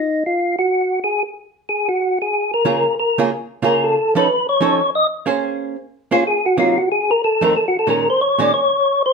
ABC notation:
X:1
M:4/4
L:1/8
Q:"Swing" 1/4=184
K:Bbm
V:1 name="Tonewheel organ"
E F2 G3 A z | z2 A G2 A2 B- | B2 B z3 B =A- | =A _c2 ^c3 e z |
z4 z F A G | F G A B =A B (3A G A | B c d =d _d3 c |]
V:2 name="Hollow-body jazz guitar"
z8 | z8 | [D,B,FA] z2 [D,B,FA] z2 [D,B,FA]2 | z [F,^CE=A] z2 [F,CEA] z3 |
[B,DAc]3 z2 [B,DAc] z2 | [C,G,B,E] z4 [F,,E,=A,C] z2 | [B,,E,A,D] z2 [B,,E,A,D] z4 |]